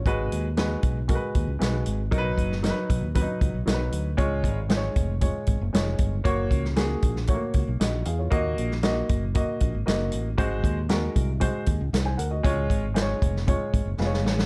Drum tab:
HH |x-x-x-x-x-x-x-x-|x-x-x-x-x-x-x-x-|x-x-x-x-x-x-x-x-|x-x-x-x-x-x-x-x-|
SD |----o-------o---|---oo-------o---|----o-------o---|---oo--o----o---|
BD |o-----o-o-o-----|o-o---o-o-o-----|o-o---o-o-o---o-|o-o---o-o-o-----|

HH |x-x-x-x-x-x-x-x-|x-x-x-x-x-x-x-x-|x-x-x-x-x-x-----|
SD |---oo-------o---|----o-------o---|----o--o----oooo|
BD |o-----o-o-o-----|o-o---o-o-o-----|o-o---o-o-o-----|